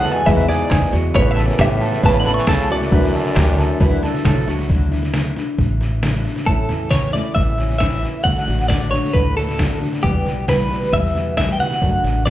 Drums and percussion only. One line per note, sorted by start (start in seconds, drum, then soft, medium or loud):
0.05 snare soft
0.27 kick loud
0.27 snare soft
0.49 snare soft
0.70 kick loud
0.70 snare loud
0.70 clap loud
0.70 tambourine loud
0.82 snare soft
0.93 snare soft
1.15 kick loud
1.15 snare soft
1.37 snare soft
1.48 snare soft
1.59 kick medium
1.59 snare loud
1.59 clap loud
1.59 tambourine loud
1.81 snare soft
1.92 snare soft
2.03 kick loud
2.03 snare soft
2.26 snare soft
2.47 kick medium
2.47 snare loud
2.47 clap loud
2.47 tambourine loud
2.59 snare soft
2.70 snare soft
2.81 snare soft
2.92 kick loud
2.92 snare soft
3.03 snare soft
3.14 snare soft
3.25 snare soft
3.36 kick medium
3.36 snare loud
3.36 clap loud
3.36 tambourine medium
3.59 snare soft
3.80 kick loud
3.80 snare soft
4.03 snare soft
4.15 snare soft
4.25 kick medium
4.25 snare loud
4.25 clap loud
4.25 tambourine medium
4.37 snare soft
4.48 snare soft
4.59 snare soft
4.70 kick medium
4.70 snare soft
4.92 snare soft
5.03 snare soft
5.14 snare loud
5.36 snare soft
5.59 kick medium
5.59 snare soft
5.81 snare soft
6.03 snare loud
6.14 snare soft
6.25 snare soft
6.36 snare soft
6.47 kick medium
6.47 snare soft
6.69 snare soft
6.91 kick medium
6.91 snare medium
7.14 snare soft
7.36 kick loud
7.36 snare soft
7.58 snare soft
7.69 snare soft
7.80 kick medium
7.80 snare loud
7.92 snare soft
8.03 snare soft
8.25 kick medium
8.25 snare soft
8.37 snare soft
8.48 snare soft
8.59 snare soft
8.70 kick medium
8.70 snare medium
8.92 snare soft
9.04 snare soft
9.15 kick loud
9.15 snare soft
9.37 snare soft
9.49 snare soft
9.59 kick medium
9.59 snare loud
9.71 snare soft
9.81 snare soft
9.93 snare soft
10.04 kick medium
10.04 snare soft
10.26 snare soft
10.49 kick medium
10.49 snare loud
10.71 snare soft
10.82 snare soft
10.93 kick loud
10.93 snare soft
11.04 snare soft
11.15 snare soft
11.37 kick medium
11.37 snare loud
11.49 snare soft
11.60 snare soft
11.71 snare soft
11.82 kick medium
11.82 snare soft
12.05 snare soft
12.26 kick medium
12.26 snare medium